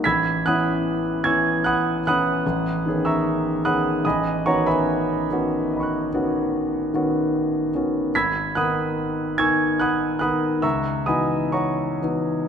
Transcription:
<<
  \new Staff \with { instrumentName = "Grand piano" } { \time 5/4 \key gis \minor \tempo 4 = 74 << { <b'' e''' gis''' b'''>8 <fis'' b'' dis''' fis'''>4 <gis'' cis''' e''' gis'''>8 <fis'' b'' dis''' fis'''>8 <fis'' b'' dis''' fis'''>4~ <fis'' b'' dis''' fis'''>16 <e'' ais'' cis''' e'''>8. <fis'' b'' dis''' fis'''>8 | <dis'' gis'' b'' dis'''>8 <cis'' fis'' ais'' cis'''>16 <b' e'' gis'' b''>1~ <b' e'' gis'' b''>16 | <b'' e''' gis''' b'''>8 <fis'' b'' dis''' fis'''>4 <gis'' cis''' e''' gis'''>8 <fis'' b'' dis''' fis'''>8 <fis'' b'' dis''' fis'''>8 <e'' ais'' cis''' e'''>8 <dis'' gis'' b'' dis'''>8 <cis'' fis'' ais'' cis'''>4 | } \\ { r1 r4 | r2 <dis'' b'' cis''' fis'''>2. | r1 r4 | } >> }
  \new Staff \with { instrumentName = "Grand piano" } { \time 5/4 \key gis \minor a,,8 <e b cis' e'>4 <e b cis' e'>4 <e b cis' e'>8 a,,8 <dis b cis' gis'>4 <dis b cis' gis'>8 | a,,8 <dis b cis' fis'>4 <dis b cis' fis'>4 <dis b cis' fis'>4 <dis b cis' fis'>4 <dis b cis' fis'>8 | gis,,8 <dis b dis' ais'>4 <dis b dis' ais'>4 <dis b dis' ais'>8 cis,8 <e b dis' fis'>4 <e b dis' fis'>8 | }
>>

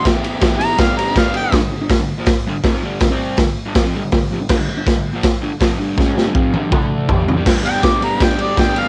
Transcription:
<<
  \new Staff \with { instrumentName = "Harmonica" } { \time 4/4 \key g \major \tempo 4 = 162 r4. bes''8 f''8 bes''8 f''8 g''8 | r1 | r1 | r1 |
r1 | r8 g''8 d'''8 bes''8 g''8 d''8 g''8 f''8 | }
  \new Staff \with { instrumentName = "Overdriven electric guitar" } { \clef bass \time 4/4 \key g \major <e b e' g'>8 <e b e' g'>8 <e b e' g'>8 <e b e' g'>8 <g b d' g'>8 <g b d' g'>8 <g b d' g'>8 <g b d' g'>8 | <g, d>16 <g, d>16 <g, d>16 <g, d>8 <g, d>8 <bes, f>16 r8 <g, d>16 r16 <f, c f>8 <g, d g>8 | <g, d>16 <c g c'>8. <g, d>8 r16 <g, d>16 <bes, f>16 <f c'>16 <g, d>16 <g, d>16 <g, d>8 <f, c>16 <g, d>16 | <g, d>16 <g, d>16 <g, d>16 <g, d>8 <g, d>8 <bes, f>16 r8 <g, d>16 r16 <f, c f>8 <g, d g>8 |
<cis aes cis'>8 <c g>16 <g, d>16 <f, c f>8 <g, d g>8 <d a d'>4 <g, d g>8 <f, c>16 <c g>16 | <g b d' g'>8 <g b d' g'>8 <g b d' g'>8 <g b d' g'>8 <g b d' g'>8 <g b d' g'>8 <g b d' g'>8 <g b d' g'>8 | }
  \new DrumStaff \with { instrumentName = "Drums" } \drummode { \time 4/4 <bd cymr sn>8 cymr8 <bd cymr sn>8 cymr8 <bd cymr sn>8 cymr8 <bd cymr sn>8 cymr8 | <hho bd sn>4 <hho bd sn>4 <hho bd sn>4 <hho bd sn>4 | <hho bd sn>4 <hho bd sn>4 <hho bd sn>4 <hho bd sn>4 | <cymc bd sn>4 <hho bd sn>4 <hho bd sn>4 <hho bd sn>4 |
<bd sn>8 sn8 bd8 tommh8 <bd toml>4 <bd tomfh>8 tomfh8 | <cymc bd sn>8 cymr8 <bd cymr sn>8 cymr8 <bd cymr sn>8 cymr8 <bd cymr sn>8 cymr8 | }
>>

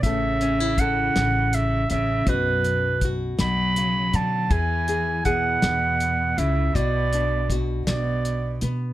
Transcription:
<<
  \new Staff \with { instrumentName = "Clarinet" } { \time 6/8 \key b \dorian \tempo 4. = 54 e''4 fis''4 e''8 e''8 | b'4 r8 b''4 a''8 | gis''4 fis''4. e''8 | d''4 r8 d''4 r8 | }
  \new Staff \with { instrumentName = "Nylon-string guitar" } { \time 6/8 \key b \dorian << { a'8 cis'16 e'16 a'4. cis'8 | fis'4 fis'2 | gis'8 gis'8 gis'4. e'8 | fis'8 d'8 fis'4. b8 | } \\ { a,4. r4. | b,4. b,8 cis8 d8 | e4. r4. | b,4. r4. | } >> }
  \new Staff \with { instrumentName = "Cello" } { \clef bass \time 6/8 \key b \dorian cis4 cis4 cis8 cis8 | fis,4 r8 fis4 fis8 | e4 b,4. cis8 | b,4 r8 b,4 r8 | }
  \new Staff \with { instrumentName = "Upright bass" } { \clef bass \time 6/8 \key b \dorian a,,4. a,,4 a,,8 | b,,4. b,,4 b,8 | e,4. e,4 cis,8 | b,,4. b,,4 b,8 | }
  \new DrumStaff \with { instrumentName = "Drums" } \drummode { \time 6/8 <hh bd>8 hh8 <hh bd>8 <hh sn>8 hh8 hh8 | <hh bd>8 hh8 <hh bd>8 <hh sn>8 hh8 hh8 | <hh bd>8 hh8 <hh bd>8 <hh sn>8 hh8 hh8 | <hh bd>8 hh8 <hh bd>8 <hh sn>8 hh8 hh8 | }
>>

